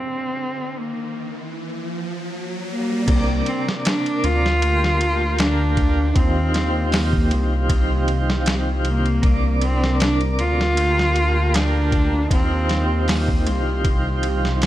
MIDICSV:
0, 0, Header, 1, 7, 480
1, 0, Start_track
1, 0, Time_signature, 4, 2, 24, 8
1, 0, Tempo, 769231
1, 9150, End_track
2, 0, Start_track
2, 0, Title_t, "Analog synth pad"
2, 0, Program_c, 0, 89
2, 1926, Note_on_c, 0, 70, 82
2, 1926, Note_on_c, 0, 86, 95
2, 1927, Note_on_c, 0, 62, 81
2, 2873, Note_off_c, 0, 62, 0
2, 2873, Note_off_c, 0, 70, 0
2, 2873, Note_off_c, 0, 86, 0
2, 2882, Note_on_c, 0, 81, 81
2, 2884, Note_on_c, 0, 77, 74
2, 2884, Note_on_c, 0, 82, 92
2, 3831, Note_off_c, 0, 81, 0
2, 3832, Note_off_c, 0, 82, 0
2, 3845, Note_on_c, 0, 67, 85
2, 3845, Note_on_c, 0, 84, 94
2, 5737, Note_off_c, 0, 77, 0
2, 5743, Note_off_c, 0, 67, 0
2, 5743, Note_off_c, 0, 84, 0
2, 5758, Note_on_c, 0, 70, 85
2, 5759, Note_on_c, 0, 62, 79
2, 5762, Note_on_c, 0, 86, 89
2, 6709, Note_off_c, 0, 62, 0
2, 6709, Note_off_c, 0, 70, 0
2, 6711, Note_off_c, 0, 86, 0
2, 6714, Note_on_c, 0, 81, 78
2, 6716, Note_on_c, 0, 77, 73
2, 6716, Note_on_c, 0, 82, 87
2, 7667, Note_off_c, 0, 81, 0
2, 7668, Note_off_c, 0, 82, 0
2, 7680, Note_on_c, 0, 84, 94
2, 7683, Note_on_c, 0, 67, 82
2, 9150, Note_off_c, 0, 67, 0
2, 9150, Note_off_c, 0, 77, 0
2, 9150, Note_off_c, 0, 84, 0
2, 9150, End_track
3, 0, Start_track
3, 0, Title_t, "Tonewheel organ"
3, 0, Program_c, 1, 16
3, 1905, Note_on_c, 1, 48, 82
3, 1918, Note_on_c, 1, 58, 70
3, 1932, Note_on_c, 1, 62, 71
3, 1946, Note_on_c, 1, 74, 91
3, 2828, Note_off_c, 1, 48, 0
3, 2834, Note_off_c, 1, 58, 0
3, 2841, Note_off_c, 1, 62, 0
3, 2848, Note_off_c, 1, 74, 0
3, 2866, Note_on_c, 1, 58, 81
3, 2886, Note_on_c, 1, 65, 73
3, 2906, Note_on_c, 1, 67, 90
3, 3788, Note_off_c, 1, 58, 0
3, 3798, Note_off_c, 1, 65, 0
3, 3808, Note_off_c, 1, 67, 0
3, 3824, Note_on_c, 1, 51, 86
3, 3839, Note_on_c, 1, 60, 86
3, 3851, Note_on_c, 1, 65, 85
3, 3864, Note_on_c, 1, 67, 103
3, 5707, Note_off_c, 1, 51, 0
3, 5715, Note_off_c, 1, 60, 0
3, 5721, Note_off_c, 1, 65, 0
3, 5727, Note_off_c, 1, 67, 0
3, 5740, Note_on_c, 1, 48, 79
3, 5754, Note_on_c, 1, 58, 74
3, 5767, Note_on_c, 1, 62, 75
3, 5780, Note_on_c, 1, 74, 91
3, 6665, Note_off_c, 1, 48, 0
3, 6672, Note_off_c, 1, 58, 0
3, 6679, Note_off_c, 1, 62, 0
3, 6685, Note_off_c, 1, 74, 0
3, 6699, Note_on_c, 1, 58, 84
3, 6720, Note_on_c, 1, 65, 77
3, 6741, Note_on_c, 1, 67, 94
3, 7625, Note_off_c, 1, 58, 0
3, 7635, Note_off_c, 1, 65, 0
3, 7646, Note_off_c, 1, 67, 0
3, 7663, Note_on_c, 1, 51, 86
3, 7677, Note_on_c, 1, 60, 84
3, 7691, Note_on_c, 1, 65, 79
3, 7705, Note_on_c, 1, 67, 99
3, 9150, Note_off_c, 1, 51, 0
3, 9150, Note_off_c, 1, 60, 0
3, 9150, Note_off_c, 1, 65, 0
3, 9150, Note_off_c, 1, 67, 0
3, 9150, End_track
4, 0, Start_track
4, 0, Title_t, "Cello"
4, 0, Program_c, 2, 42
4, 0, Note_on_c, 2, 60, 96
4, 497, Note_on_c, 2, 58, 75
4, 507, Note_off_c, 2, 60, 0
4, 968, Note_off_c, 2, 58, 0
4, 1691, Note_on_c, 2, 58, 94
4, 2140, Note_off_c, 2, 58, 0
4, 2173, Note_on_c, 2, 60, 88
4, 2278, Note_off_c, 2, 60, 0
4, 2408, Note_on_c, 2, 62, 100
4, 2648, Note_on_c, 2, 65, 121
4, 2657, Note_off_c, 2, 62, 0
4, 3367, Note_on_c, 2, 62, 99
4, 3376, Note_off_c, 2, 65, 0
4, 3848, Note_on_c, 2, 60, 91
4, 3857, Note_off_c, 2, 62, 0
4, 4329, Note_on_c, 2, 58, 75
4, 4338, Note_off_c, 2, 60, 0
4, 4804, Note_off_c, 2, 58, 0
4, 5537, Note_on_c, 2, 58, 100
4, 5983, Note_off_c, 2, 58, 0
4, 6017, Note_on_c, 2, 60, 96
4, 6232, Note_off_c, 2, 60, 0
4, 6253, Note_on_c, 2, 62, 92
4, 6358, Note_off_c, 2, 62, 0
4, 6488, Note_on_c, 2, 65, 126
4, 7211, Note_on_c, 2, 62, 104
4, 7220, Note_off_c, 2, 65, 0
4, 7685, Note_off_c, 2, 62, 0
4, 7692, Note_on_c, 2, 60, 98
4, 8169, Note_on_c, 2, 58, 77
4, 8178, Note_off_c, 2, 60, 0
4, 8644, Note_off_c, 2, 58, 0
4, 9150, End_track
5, 0, Start_track
5, 0, Title_t, "Detuned saw bass"
5, 0, Program_c, 3, 39
5, 1920, Note_on_c, 3, 36, 101
5, 2133, Note_off_c, 3, 36, 0
5, 2646, Note_on_c, 3, 38, 89
5, 3821, Note_off_c, 3, 38, 0
5, 3843, Note_on_c, 3, 39, 80
5, 4563, Note_on_c, 3, 36, 88
5, 4573, Note_off_c, 3, 39, 0
5, 5740, Note_off_c, 3, 36, 0
5, 5761, Note_on_c, 3, 36, 80
5, 6481, Note_on_c, 3, 38, 86
5, 6490, Note_off_c, 3, 36, 0
5, 7659, Note_off_c, 3, 38, 0
5, 7681, Note_on_c, 3, 39, 76
5, 8403, Note_on_c, 3, 36, 87
5, 8412, Note_off_c, 3, 39, 0
5, 9150, Note_off_c, 3, 36, 0
5, 9150, End_track
6, 0, Start_track
6, 0, Title_t, "Riser"
6, 0, Program_c, 4, 103
6, 0, Note_on_c, 4, 60, 64
6, 1920, Note_off_c, 4, 60, 0
6, 9150, End_track
7, 0, Start_track
7, 0, Title_t, "Drums"
7, 1920, Note_on_c, 9, 49, 89
7, 1920, Note_on_c, 9, 51, 85
7, 1921, Note_on_c, 9, 36, 112
7, 1983, Note_off_c, 9, 36, 0
7, 1983, Note_off_c, 9, 49, 0
7, 1983, Note_off_c, 9, 51, 0
7, 2161, Note_on_c, 9, 51, 67
7, 2223, Note_off_c, 9, 51, 0
7, 2300, Note_on_c, 9, 38, 56
7, 2362, Note_off_c, 9, 38, 0
7, 2404, Note_on_c, 9, 51, 90
7, 2413, Note_on_c, 9, 38, 117
7, 2466, Note_off_c, 9, 51, 0
7, 2475, Note_off_c, 9, 38, 0
7, 2534, Note_on_c, 9, 51, 45
7, 2597, Note_off_c, 9, 51, 0
7, 2644, Note_on_c, 9, 51, 72
7, 2707, Note_off_c, 9, 51, 0
7, 2782, Note_on_c, 9, 38, 53
7, 2845, Note_off_c, 9, 38, 0
7, 2885, Note_on_c, 9, 51, 90
7, 2947, Note_off_c, 9, 51, 0
7, 3022, Note_on_c, 9, 38, 51
7, 3084, Note_off_c, 9, 38, 0
7, 3124, Note_on_c, 9, 51, 69
7, 3187, Note_off_c, 9, 51, 0
7, 3361, Note_on_c, 9, 51, 86
7, 3369, Note_on_c, 9, 38, 114
7, 3423, Note_off_c, 9, 51, 0
7, 3432, Note_off_c, 9, 38, 0
7, 3601, Note_on_c, 9, 36, 93
7, 3601, Note_on_c, 9, 51, 62
7, 3664, Note_off_c, 9, 36, 0
7, 3664, Note_off_c, 9, 51, 0
7, 3841, Note_on_c, 9, 36, 112
7, 3841, Note_on_c, 9, 51, 88
7, 3904, Note_off_c, 9, 36, 0
7, 3904, Note_off_c, 9, 51, 0
7, 4083, Note_on_c, 9, 51, 67
7, 4091, Note_on_c, 9, 38, 56
7, 4145, Note_off_c, 9, 51, 0
7, 4154, Note_off_c, 9, 38, 0
7, 4320, Note_on_c, 9, 46, 81
7, 4328, Note_on_c, 9, 38, 118
7, 4382, Note_off_c, 9, 46, 0
7, 4391, Note_off_c, 9, 38, 0
7, 4449, Note_on_c, 9, 36, 93
7, 4511, Note_off_c, 9, 36, 0
7, 4562, Note_on_c, 9, 51, 69
7, 4624, Note_off_c, 9, 51, 0
7, 4800, Note_on_c, 9, 36, 108
7, 4802, Note_on_c, 9, 51, 88
7, 4863, Note_off_c, 9, 36, 0
7, 4865, Note_off_c, 9, 51, 0
7, 5041, Note_on_c, 9, 51, 68
7, 5104, Note_off_c, 9, 51, 0
7, 5177, Note_on_c, 9, 38, 57
7, 5240, Note_off_c, 9, 38, 0
7, 5280, Note_on_c, 9, 51, 82
7, 5288, Note_on_c, 9, 38, 117
7, 5342, Note_off_c, 9, 51, 0
7, 5351, Note_off_c, 9, 38, 0
7, 5520, Note_on_c, 9, 51, 68
7, 5583, Note_off_c, 9, 51, 0
7, 5651, Note_on_c, 9, 51, 42
7, 5713, Note_off_c, 9, 51, 0
7, 5759, Note_on_c, 9, 36, 106
7, 5760, Note_on_c, 9, 51, 85
7, 5821, Note_off_c, 9, 36, 0
7, 5822, Note_off_c, 9, 51, 0
7, 6000, Note_on_c, 9, 51, 68
7, 6062, Note_off_c, 9, 51, 0
7, 6138, Note_on_c, 9, 38, 51
7, 6200, Note_off_c, 9, 38, 0
7, 6242, Note_on_c, 9, 51, 89
7, 6250, Note_on_c, 9, 38, 116
7, 6304, Note_off_c, 9, 51, 0
7, 6313, Note_off_c, 9, 38, 0
7, 6369, Note_on_c, 9, 51, 44
7, 6431, Note_off_c, 9, 51, 0
7, 6482, Note_on_c, 9, 51, 68
7, 6544, Note_off_c, 9, 51, 0
7, 6619, Note_on_c, 9, 38, 51
7, 6682, Note_off_c, 9, 38, 0
7, 6722, Note_on_c, 9, 51, 86
7, 6784, Note_off_c, 9, 51, 0
7, 6860, Note_on_c, 9, 38, 51
7, 6923, Note_off_c, 9, 38, 0
7, 6962, Note_on_c, 9, 51, 71
7, 7024, Note_off_c, 9, 51, 0
7, 7202, Note_on_c, 9, 51, 91
7, 7211, Note_on_c, 9, 38, 114
7, 7264, Note_off_c, 9, 51, 0
7, 7273, Note_off_c, 9, 38, 0
7, 7439, Note_on_c, 9, 36, 95
7, 7440, Note_on_c, 9, 51, 67
7, 7502, Note_off_c, 9, 36, 0
7, 7502, Note_off_c, 9, 51, 0
7, 7680, Note_on_c, 9, 36, 106
7, 7682, Note_on_c, 9, 51, 88
7, 7742, Note_off_c, 9, 36, 0
7, 7744, Note_off_c, 9, 51, 0
7, 7921, Note_on_c, 9, 51, 66
7, 7930, Note_on_c, 9, 38, 53
7, 7984, Note_off_c, 9, 51, 0
7, 7992, Note_off_c, 9, 38, 0
7, 8161, Note_on_c, 9, 46, 80
7, 8169, Note_on_c, 9, 38, 120
7, 8223, Note_off_c, 9, 46, 0
7, 8232, Note_off_c, 9, 38, 0
7, 8289, Note_on_c, 9, 36, 90
7, 8351, Note_off_c, 9, 36, 0
7, 8403, Note_on_c, 9, 51, 69
7, 8465, Note_off_c, 9, 51, 0
7, 8640, Note_on_c, 9, 36, 107
7, 8640, Note_on_c, 9, 51, 82
7, 8702, Note_off_c, 9, 36, 0
7, 8702, Note_off_c, 9, 51, 0
7, 8879, Note_on_c, 9, 51, 68
7, 8942, Note_off_c, 9, 51, 0
7, 9017, Note_on_c, 9, 38, 54
7, 9079, Note_off_c, 9, 38, 0
7, 9121, Note_on_c, 9, 51, 80
7, 9130, Note_on_c, 9, 38, 102
7, 9150, Note_off_c, 9, 38, 0
7, 9150, Note_off_c, 9, 51, 0
7, 9150, End_track
0, 0, End_of_file